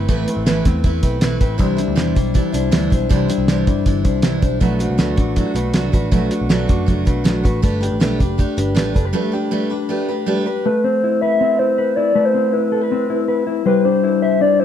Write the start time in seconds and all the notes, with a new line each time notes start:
Already playing: C4 E4
0.08 A1 A2 E3 A3 C4 E4 B4, kick, closed hi-hat
0.28 A3 C4 E4 B4, closed hi-hat
0.37 A1
0.46 A2 E3 A3 C4 E4 B4, snare, closed hi-hat
0.65 E2 A3 C4 E4 B4, kick, snare, closed hi-hat
0.84 E2 A3 C4 E4 B4, kick, closed hi-hat
1.03 B1 A3 C4 E4 B4, kick, closed hi-hat
1.21 B1 A2 E3 A3 C4 E4 B4, snare, closed hi-hat
1.40 A1 A3 C4 E4 B4, kick, closed hi-hat
1.58 C2 C3 E3 G3 D4 E4 C5, kick, closed hi-hat
1.77 G3 D4 E4, closed hi-hat
1.88 D2
1.95 E2 C3 E3 G3 D4 E4 C5, snare, closed hi-hat
2.15 B1 G3 D4 E4, kick, closed hi-hat
2.34 E3 G3 D4 E4, kick, closed hi-hat
2.52 C2 G3 D4 E4 C5, closed hi-hat
2.71 D2 C3 E3 G3 D4 E4, snare, closed hi-hat
2.90 B1 G3 D4 E4 C5, kick, closed hi-hat
3.09 C2 C3 E3 G3 D4 E4 C5, kick, closed hi-hat
3.28 G3 D4 E4, closed hi-hat
3.38 C2
3.48 C3 E3 G3 D4 E4 C5, snare, closed hi-hat
3.67 G2 G3 D4 E4, kick, closed hi-hat
3.86 G1 E3 G3 D4 E4, kick, closed hi-hat
4.04 C2 G3 D4 E4 C5, kick, closed hi-hat
4.22 C2 C3 E3 G3 D4 E4, snare, closed hi-hat
4.42 B1 G3 D4 E4 C5, kick, closed hi-hat
4.60 B1 B2 F#3 A3 D4 F#4 B4, kick, closed hi-hat
4.79 A3 D4 F#4, closed hi-hat
4.90 C2
4.98 D2 B2 F#3 A3 D4 F#4 B4, snare, closed hi-hat
5.16 A1 A3 D4 F#4, kick, closed hi-hat
5.36 F#3 A3 D4 E4 F#4, kick, closed hi-hat
5.46 F#4
5.54 B1 A3 D4 F#4 B4, closed hi-hat
5.73 C2 B2 F#3 A3 D4 F#4, snare, closed hi-hat
5.92 A1 A3 D4 F#4 B4, kick, closed hi-hat
6.11 B1 B2 F#3 A3 D4 F#4 B4, kick, closed hi-hat
6.31 A3 D4 F#4, closed hi-hat
6.41 B1
6.49 B2 F#3 A3 D4 F#4 B4, snare, closed hi-hat
6.67 F#2 A3 D4 F#4, kick, closed hi-hat
6.86 F#1 F#3 A3 D4 F#4, kick, closed hi-hat
7.05 B1 A3 D4 F#4 B4, kick, closed hi-hat
7.24 B1 B2 F#3 A3 D4 F#4, snare, closed hi-hat
7.43 A1 A3 D4 F#4 B4, kick, closed hi-hat
7.62 G1 G3 A3 D4 G4 B4, kick, closed hi-hat
7.80 D4 G4 B4, closed hi-hat
7.92 A1
8.00 B1 G3 A3 D4 G4 B4, snare, closed hi-hat
8.20 F#1 D4 G4 B4, kick, closed hi-hat
8.38 A3 D4 G4 B4, kick, closed hi-hat
8.57 G1 D4 G4 B4, closed hi-hat
8.75 A1 G3 A3 D4 G4 B4, snare, closed hi-hat
8.94 F#1 D4 G4 A4 B4, kick, closed hi-hat
9.05 B4
9.13 G3 A3 D4 G4 B4
9.32 D4 G4 B4
9.51 G3 A3 D4 G4 B4
9.70 D4 G4 B4
9.89 A3 D4 G4 B4
10.08 D4 G4 B4
10.26 G3 A3 D4 G4 B4
10.46 D4 G4 B4
10.65 A3 B4
10.84 C4 C5
11.04 E4
11.21 B4 E5
11.41 C4
11.59 E4 C5
11.78 B4
11.96 E4 D5
12.15 A3 B4
12.25 C5
12.34 C4
12.53 E4 B4
12.72 A4
12.82 B4
12.91 C4
13.10 E4
13.28 B4
13.47 E4
13.66 G3 B4 C5
13.85 D4 C5
14.03 E4
14.22 C5 E5
14.41 D4 D5
14.60 E4 C5